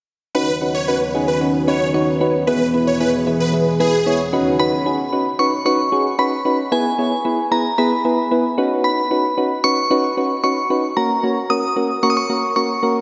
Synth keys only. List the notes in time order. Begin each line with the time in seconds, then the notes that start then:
0.35 C#4 D#4 F#4 B4
0.61 C#4 D#4 F#4 B4
0.88 C#4 D#4 F#4 B4
1.14 C#4 D#4 F#4 G#4
1.41 C#4 D#4 F#4 B4
1.67 C#4 D#4 F#4 B4
1.94 C#4 D#4 F#4 C#5
2.21 C#4 D#4 F#4 B4
2.47 B3 E4 G#4 B4
2.74 B3 E4 G#4 B4
3.00 B3 E4 G#4 B4
3.27 B3 E4 G#4 B4
3.53 B3 E4 G#4 B4
3.80 B3 E4 G#4 B4
4.06 B3 E4 G#4 C#5
4.33 C#4 D#4 F#4 B4
4.59 C#4 D#4 F#4 B4
4.86 C#4 D#4 F#4 G#4
5.12 C#4 D#4 F#4 B4
5.39 C#4 D#4 F#4 B4
5.65 C#4 D#4 F#4 B4
5.92 C#4 D#4 F#4 G#4
6.18 C#4 D#4 F#4 B4
6.45 C#4 D#4 F#4 B4
6.72 B3 E4 G#4 B4
6.98 B3 E4 G#4 C#5
7.25 B3 E4 G#4 B4
7.51 B3 E4 G#4 B4
7.78 B3 E4 G#4 B4
8.05 B3 E4 G#4 B4
8.31 B3 E4 G#4 B4
8.58 C#4 D#4 F#4 B4
9.11 C#4 D#4 F#4 B4
9.37 C#4 D#4 F#4 B4
9.64 C#4 D#4 F#4 B4
9.90 C#4 D#4 F#4 B4
10.17 C#4 D#4 F#4 B4
10.43 C#4 D#4 F#4 B4
10.70 C#4 D#4 F#4 B4
10.96 A#3 C#4 F#4 A#4
11.23 A#3 C#4 F#4 C#5
11.50 A#3 C#4 F#4 A#4
11.76 A#3 C#4 F#4 A#4
12.03 A#3 C#4 F#4 A#4
12.29 A#3 C#4 F#4 A#4
12.56 A#3 C#4 F#4 A#4
12.82 A#3 C#4 F#4 A#4